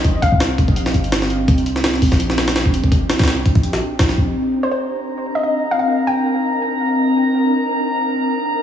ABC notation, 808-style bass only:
X:1
M:4/4
L:1/16
Q:"Swing 16ths" 1/4=167
K:Cm
V:1 name="808-style bass" clef=bass
B,,,3 C,,4 B,,,3 G,,,6 | C,,6- C,, B,,,8- B,,,- | B,,,3 C,,4 B,,,3 z2 B,,,2 B,,,2 | z16 |
z16 | z16 |]